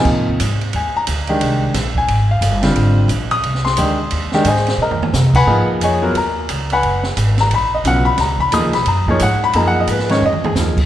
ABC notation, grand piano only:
X:1
M:4/4
L:1/8
Q:"Swing" 1/4=177
K:Ablyd
V:1 name="Grand piano"
z4 a b z2 | z3 a2 f3 | z3 e'2 c'3 | z2 [Acea]2 [Beb]3 [_c_ga_c']- |
[K:Dbmix] [cgac'] z [Adea]2 [Bb]3 [cgac']- | [cgac'] z2 b c' e g c' | b c' e' c' b d g c' | (3b g e c d e A z2 |]
V:2 name="Grand piano"
[C,F,B,E]2 z4 z [E,A,DG]- | [E,A,DG]2 z4 z [D,G,CF]- | [D,G,CF]2 z4 [E,A,DG] z | z [E,A,DG] z6 |
[K:Dbmix] [F,B,EA]3 [G,CFB] z4 | z6 [D,G,CF] z | z2 [F,B,EA] z2 [F,B,EA] z2 | [F,B,EA]3 [E,A,DE] z2 [F,B,EA] z |]